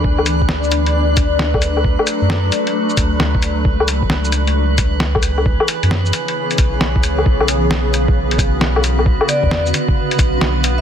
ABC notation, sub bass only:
X:1
M:4/4
L:1/16
Q:"Swing 16ths" 1/4=133
K:Bdor
V:1 name="Sub bass" clef=bass
D,,16- | D,, z2 F,,3 z4 D,,2 D,,4 | C,,16- | C,, z2 F,,3 z4 B,,,4 C,,2 |
B,,,16- | B,,, z2 E,,3 z4 B,,,2 B,,,4 |]